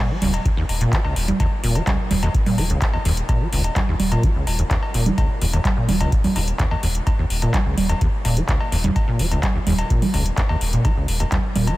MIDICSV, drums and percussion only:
0, 0, Header, 1, 2, 480
1, 0, Start_track
1, 0, Key_signature, -6, "minor"
1, 0, Tempo, 472441
1, 1421, Time_signature, 4, 2, 24, 8
1, 11960, End_track
2, 0, Start_track
2, 0, Title_t, "Drums"
2, 222, Note_on_c, 9, 46, 106
2, 222, Note_on_c, 9, 64, 92
2, 323, Note_off_c, 9, 46, 0
2, 323, Note_off_c, 9, 64, 0
2, 344, Note_on_c, 9, 42, 67
2, 344, Note_on_c, 9, 56, 55
2, 445, Note_off_c, 9, 42, 0
2, 445, Note_off_c, 9, 56, 0
2, 460, Note_on_c, 9, 36, 117
2, 462, Note_on_c, 9, 42, 53
2, 562, Note_off_c, 9, 36, 0
2, 564, Note_off_c, 9, 42, 0
2, 703, Note_on_c, 9, 46, 102
2, 703, Note_on_c, 9, 56, 37
2, 805, Note_off_c, 9, 46, 0
2, 805, Note_off_c, 9, 56, 0
2, 823, Note_on_c, 9, 42, 63
2, 925, Note_off_c, 9, 42, 0
2, 941, Note_on_c, 9, 36, 118
2, 942, Note_on_c, 9, 42, 52
2, 946, Note_on_c, 9, 39, 116
2, 1042, Note_off_c, 9, 36, 0
2, 1044, Note_off_c, 9, 42, 0
2, 1048, Note_off_c, 9, 39, 0
2, 1062, Note_on_c, 9, 56, 53
2, 1164, Note_off_c, 9, 56, 0
2, 1181, Note_on_c, 9, 46, 99
2, 1283, Note_off_c, 9, 46, 0
2, 1303, Note_on_c, 9, 42, 65
2, 1303, Note_on_c, 9, 64, 89
2, 1405, Note_off_c, 9, 42, 0
2, 1405, Note_off_c, 9, 64, 0
2, 1421, Note_on_c, 9, 36, 114
2, 1422, Note_on_c, 9, 42, 51
2, 1422, Note_on_c, 9, 56, 55
2, 1522, Note_off_c, 9, 36, 0
2, 1523, Note_off_c, 9, 42, 0
2, 1523, Note_off_c, 9, 56, 0
2, 1662, Note_on_c, 9, 46, 104
2, 1763, Note_off_c, 9, 46, 0
2, 1782, Note_on_c, 9, 42, 63
2, 1782, Note_on_c, 9, 56, 37
2, 1884, Note_off_c, 9, 42, 0
2, 1884, Note_off_c, 9, 56, 0
2, 1901, Note_on_c, 9, 36, 119
2, 1901, Note_on_c, 9, 42, 53
2, 1901, Note_on_c, 9, 64, 86
2, 1905, Note_on_c, 9, 39, 120
2, 2002, Note_off_c, 9, 36, 0
2, 2003, Note_off_c, 9, 42, 0
2, 2003, Note_off_c, 9, 64, 0
2, 2007, Note_off_c, 9, 39, 0
2, 2141, Note_on_c, 9, 46, 109
2, 2141, Note_on_c, 9, 64, 93
2, 2243, Note_off_c, 9, 46, 0
2, 2243, Note_off_c, 9, 64, 0
2, 2263, Note_on_c, 9, 42, 64
2, 2263, Note_on_c, 9, 56, 57
2, 2365, Note_off_c, 9, 42, 0
2, 2365, Note_off_c, 9, 56, 0
2, 2381, Note_on_c, 9, 36, 125
2, 2383, Note_on_c, 9, 42, 52
2, 2483, Note_off_c, 9, 36, 0
2, 2484, Note_off_c, 9, 42, 0
2, 2503, Note_on_c, 9, 46, 61
2, 2503, Note_on_c, 9, 64, 87
2, 2604, Note_off_c, 9, 46, 0
2, 2604, Note_off_c, 9, 64, 0
2, 2622, Note_on_c, 9, 46, 107
2, 2622, Note_on_c, 9, 56, 38
2, 2724, Note_off_c, 9, 46, 0
2, 2724, Note_off_c, 9, 56, 0
2, 2742, Note_on_c, 9, 42, 62
2, 2844, Note_off_c, 9, 42, 0
2, 2861, Note_on_c, 9, 36, 120
2, 2861, Note_on_c, 9, 42, 51
2, 2865, Note_on_c, 9, 39, 122
2, 2963, Note_off_c, 9, 36, 0
2, 2963, Note_off_c, 9, 42, 0
2, 2967, Note_off_c, 9, 39, 0
2, 2982, Note_on_c, 9, 56, 55
2, 3084, Note_off_c, 9, 56, 0
2, 3102, Note_on_c, 9, 46, 104
2, 3203, Note_off_c, 9, 46, 0
2, 3222, Note_on_c, 9, 42, 65
2, 3324, Note_off_c, 9, 42, 0
2, 3341, Note_on_c, 9, 36, 121
2, 3341, Note_on_c, 9, 42, 49
2, 3341, Note_on_c, 9, 56, 59
2, 3443, Note_off_c, 9, 36, 0
2, 3443, Note_off_c, 9, 42, 0
2, 3443, Note_off_c, 9, 56, 0
2, 3581, Note_on_c, 9, 46, 107
2, 3683, Note_off_c, 9, 46, 0
2, 3702, Note_on_c, 9, 42, 61
2, 3702, Note_on_c, 9, 56, 39
2, 3804, Note_off_c, 9, 42, 0
2, 3804, Note_off_c, 9, 56, 0
2, 3821, Note_on_c, 9, 36, 123
2, 3822, Note_on_c, 9, 42, 49
2, 3822, Note_on_c, 9, 64, 86
2, 3826, Note_on_c, 9, 39, 117
2, 3923, Note_off_c, 9, 36, 0
2, 3923, Note_off_c, 9, 42, 0
2, 3923, Note_off_c, 9, 64, 0
2, 3927, Note_off_c, 9, 39, 0
2, 4061, Note_on_c, 9, 46, 109
2, 4061, Note_on_c, 9, 64, 97
2, 4162, Note_off_c, 9, 46, 0
2, 4162, Note_off_c, 9, 64, 0
2, 4183, Note_on_c, 9, 42, 62
2, 4183, Note_on_c, 9, 56, 58
2, 4284, Note_off_c, 9, 42, 0
2, 4284, Note_off_c, 9, 56, 0
2, 4301, Note_on_c, 9, 36, 124
2, 4302, Note_on_c, 9, 42, 51
2, 4403, Note_off_c, 9, 36, 0
2, 4403, Note_off_c, 9, 42, 0
2, 4542, Note_on_c, 9, 46, 107
2, 4542, Note_on_c, 9, 56, 39
2, 4644, Note_off_c, 9, 46, 0
2, 4644, Note_off_c, 9, 56, 0
2, 4663, Note_on_c, 9, 42, 59
2, 4764, Note_off_c, 9, 42, 0
2, 4781, Note_on_c, 9, 36, 121
2, 4783, Note_on_c, 9, 42, 49
2, 4787, Note_on_c, 9, 39, 116
2, 4882, Note_off_c, 9, 36, 0
2, 4884, Note_off_c, 9, 42, 0
2, 4888, Note_off_c, 9, 39, 0
2, 4903, Note_on_c, 9, 56, 56
2, 5005, Note_off_c, 9, 56, 0
2, 5022, Note_on_c, 9, 46, 105
2, 5124, Note_off_c, 9, 46, 0
2, 5143, Note_on_c, 9, 42, 61
2, 5143, Note_on_c, 9, 64, 94
2, 5244, Note_off_c, 9, 42, 0
2, 5244, Note_off_c, 9, 64, 0
2, 5260, Note_on_c, 9, 36, 115
2, 5262, Note_on_c, 9, 42, 48
2, 5262, Note_on_c, 9, 56, 61
2, 5362, Note_off_c, 9, 36, 0
2, 5363, Note_off_c, 9, 42, 0
2, 5363, Note_off_c, 9, 56, 0
2, 5502, Note_on_c, 9, 46, 101
2, 5603, Note_off_c, 9, 46, 0
2, 5623, Note_on_c, 9, 42, 61
2, 5623, Note_on_c, 9, 56, 41
2, 5725, Note_off_c, 9, 42, 0
2, 5725, Note_off_c, 9, 56, 0
2, 5740, Note_on_c, 9, 36, 121
2, 5741, Note_on_c, 9, 42, 48
2, 5741, Note_on_c, 9, 64, 84
2, 5745, Note_on_c, 9, 39, 115
2, 5842, Note_off_c, 9, 36, 0
2, 5843, Note_off_c, 9, 42, 0
2, 5843, Note_off_c, 9, 64, 0
2, 5847, Note_off_c, 9, 39, 0
2, 5980, Note_on_c, 9, 46, 108
2, 5980, Note_on_c, 9, 64, 94
2, 6082, Note_off_c, 9, 46, 0
2, 6082, Note_off_c, 9, 64, 0
2, 6102, Note_on_c, 9, 42, 62
2, 6102, Note_on_c, 9, 56, 60
2, 6203, Note_off_c, 9, 42, 0
2, 6203, Note_off_c, 9, 56, 0
2, 6220, Note_on_c, 9, 36, 120
2, 6221, Note_on_c, 9, 42, 48
2, 6322, Note_off_c, 9, 36, 0
2, 6323, Note_off_c, 9, 42, 0
2, 6342, Note_on_c, 9, 46, 62
2, 6342, Note_on_c, 9, 64, 81
2, 6444, Note_off_c, 9, 46, 0
2, 6444, Note_off_c, 9, 64, 0
2, 6460, Note_on_c, 9, 46, 105
2, 6460, Note_on_c, 9, 56, 41
2, 6562, Note_off_c, 9, 46, 0
2, 6562, Note_off_c, 9, 56, 0
2, 6581, Note_on_c, 9, 42, 58
2, 6682, Note_off_c, 9, 42, 0
2, 6699, Note_on_c, 9, 42, 48
2, 6700, Note_on_c, 9, 36, 122
2, 6703, Note_on_c, 9, 39, 112
2, 6801, Note_off_c, 9, 42, 0
2, 6802, Note_off_c, 9, 36, 0
2, 6805, Note_off_c, 9, 39, 0
2, 6820, Note_on_c, 9, 56, 60
2, 6922, Note_off_c, 9, 56, 0
2, 6939, Note_on_c, 9, 46, 105
2, 7041, Note_off_c, 9, 46, 0
2, 7061, Note_on_c, 9, 42, 61
2, 7163, Note_off_c, 9, 42, 0
2, 7180, Note_on_c, 9, 36, 112
2, 7180, Note_on_c, 9, 42, 49
2, 7180, Note_on_c, 9, 56, 60
2, 7282, Note_off_c, 9, 36, 0
2, 7282, Note_off_c, 9, 42, 0
2, 7282, Note_off_c, 9, 56, 0
2, 7419, Note_on_c, 9, 46, 99
2, 7521, Note_off_c, 9, 46, 0
2, 7541, Note_on_c, 9, 42, 60
2, 7541, Note_on_c, 9, 56, 39
2, 7642, Note_off_c, 9, 42, 0
2, 7642, Note_off_c, 9, 56, 0
2, 7660, Note_on_c, 9, 42, 50
2, 7660, Note_on_c, 9, 64, 81
2, 7661, Note_on_c, 9, 36, 116
2, 7664, Note_on_c, 9, 39, 110
2, 7762, Note_off_c, 9, 36, 0
2, 7762, Note_off_c, 9, 42, 0
2, 7762, Note_off_c, 9, 64, 0
2, 7766, Note_off_c, 9, 39, 0
2, 7900, Note_on_c, 9, 46, 105
2, 7900, Note_on_c, 9, 64, 90
2, 8001, Note_off_c, 9, 46, 0
2, 8001, Note_off_c, 9, 64, 0
2, 8021, Note_on_c, 9, 42, 61
2, 8021, Note_on_c, 9, 56, 59
2, 8122, Note_off_c, 9, 42, 0
2, 8122, Note_off_c, 9, 56, 0
2, 8140, Note_on_c, 9, 42, 48
2, 8141, Note_on_c, 9, 36, 116
2, 8242, Note_off_c, 9, 42, 0
2, 8243, Note_off_c, 9, 36, 0
2, 8381, Note_on_c, 9, 46, 101
2, 8381, Note_on_c, 9, 56, 40
2, 8483, Note_off_c, 9, 46, 0
2, 8483, Note_off_c, 9, 56, 0
2, 8503, Note_on_c, 9, 42, 59
2, 8605, Note_off_c, 9, 42, 0
2, 8621, Note_on_c, 9, 36, 120
2, 8621, Note_on_c, 9, 42, 47
2, 8625, Note_on_c, 9, 39, 110
2, 8723, Note_off_c, 9, 36, 0
2, 8723, Note_off_c, 9, 42, 0
2, 8727, Note_off_c, 9, 39, 0
2, 8743, Note_on_c, 9, 56, 58
2, 8844, Note_off_c, 9, 56, 0
2, 8862, Note_on_c, 9, 46, 97
2, 8964, Note_off_c, 9, 46, 0
2, 8983, Note_on_c, 9, 42, 61
2, 8983, Note_on_c, 9, 64, 89
2, 9084, Note_off_c, 9, 42, 0
2, 9084, Note_off_c, 9, 64, 0
2, 9102, Note_on_c, 9, 36, 112
2, 9102, Note_on_c, 9, 42, 51
2, 9102, Note_on_c, 9, 56, 57
2, 9203, Note_off_c, 9, 36, 0
2, 9204, Note_off_c, 9, 42, 0
2, 9204, Note_off_c, 9, 56, 0
2, 9341, Note_on_c, 9, 46, 97
2, 9442, Note_off_c, 9, 46, 0
2, 9464, Note_on_c, 9, 42, 64
2, 9464, Note_on_c, 9, 56, 39
2, 9565, Note_off_c, 9, 42, 0
2, 9565, Note_off_c, 9, 56, 0
2, 9581, Note_on_c, 9, 36, 112
2, 9582, Note_on_c, 9, 42, 50
2, 9582, Note_on_c, 9, 64, 78
2, 9586, Note_on_c, 9, 39, 110
2, 9683, Note_off_c, 9, 36, 0
2, 9684, Note_off_c, 9, 42, 0
2, 9684, Note_off_c, 9, 64, 0
2, 9688, Note_off_c, 9, 39, 0
2, 9821, Note_on_c, 9, 46, 103
2, 9821, Note_on_c, 9, 64, 89
2, 9923, Note_off_c, 9, 46, 0
2, 9923, Note_off_c, 9, 64, 0
2, 9942, Note_on_c, 9, 42, 64
2, 9942, Note_on_c, 9, 56, 60
2, 10044, Note_off_c, 9, 42, 0
2, 10044, Note_off_c, 9, 56, 0
2, 10062, Note_on_c, 9, 36, 115
2, 10062, Note_on_c, 9, 42, 51
2, 10163, Note_off_c, 9, 36, 0
2, 10163, Note_off_c, 9, 42, 0
2, 10182, Note_on_c, 9, 46, 59
2, 10182, Note_on_c, 9, 64, 78
2, 10283, Note_off_c, 9, 46, 0
2, 10283, Note_off_c, 9, 64, 0
2, 10301, Note_on_c, 9, 46, 101
2, 10301, Note_on_c, 9, 56, 39
2, 10402, Note_off_c, 9, 46, 0
2, 10402, Note_off_c, 9, 56, 0
2, 10421, Note_on_c, 9, 42, 62
2, 10522, Note_off_c, 9, 42, 0
2, 10541, Note_on_c, 9, 36, 115
2, 10541, Note_on_c, 9, 42, 50
2, 10545, Note_on_c, 9, 39, 106
2, 10642, Note_off_c, 9, 42, 0
2, 10643, Note_off_c, 9, 36, 0
2, 10646, Note_off_c, 9, 39, 0
2, 10661, Note_on_c, 9, 56, 57
2, 10763, Note_off_c, 9, 56, 0
2, 10781, Note_on_c, 9, 46, 95
2, 10883, Note_off_c, 9, 46, 0
2, 10902, Note_on_c, 9, 42, 62
2, 11003, Note_off_c, 9, 42, 0
2, 11021, Note_on_c, 9, 36, 110
2, 11021, Note_on_c, 9, 42, 53
2, 11021, Note_on_c, 9, 56, 57
2, 11123, Note_off_c, 9, 36, 0
2, 11123, Note_off_c, 9, 42, 0
2, 11123, Note_off_c, 9, 56, 0
2, 11260, Note_on_c, 9, 46, 96
2, 11361, Note_off_c, 9, 46, 0
2, 11381, Note_on_c, 9, 42, 65
2, 11381, Note_on_c, 9, 56, 38
2, 11482, Note_off_c, 9, 42, 0
2, 11482, Note_off_c, 9, 56, 0
2, 11500, Note_on_c, 9, 42, 54
2, 11500, Note_on_c, 9, 64, 77
2, 11501, Note_on_c, 9, 36, 114
2, 11504, Note_on_c, 9, 39, 113
2, 11602, Note_off_c, 9, 36, 0
2, 11602, Note_off_c, 9, 42, 0
2, 11602, Note_off_c, 9, 64, 0
2, 11606, Note_off_c, 9, 39, 0
2, 11740, Note_on_c, 9, 46, 100
2, 11740, Note_on_c, 9, 64, 89
2, 11842, Note_off_c, 9, 46, 0
2, 11842, Note_off_c, 9, 64, 0
2, 11861, Note_on_c, 9, 42, 65
2, 11861, Note_on_c, 9, 56, 56
2, 11960, Note_off_c, 9, 42, 0
2, 11960, Note_off_c, 9, 56, 0
2, 11960, End_track
0, 0, End_of_file